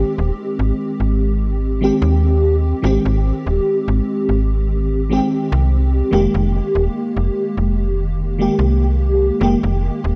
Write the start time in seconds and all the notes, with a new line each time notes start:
Already playing: D#3 G#3 C4 G4
0.18 D#1
0.59 G#1
1.00 G#1
1.81 D#3 G#3 C4 G4
2.02 D#2
2.82 G#1 D#3 G#3 C4 G4
3.05 G#1
3.46 D#1
3.88 G#1
4.29 G#1
5.09 D#3 G#3 C4 G4
5.52 C2
6.11 F1 D#3 G#3 A#3 G4
6.34 F1
6.75 D#1
7.16 F1
7.57 F1
8.38 D#3 G#3 A#3 G4
8.59 C2
9.40 F1 D#3 G#3 A#3 G4
9.63 F1
10.04 D#1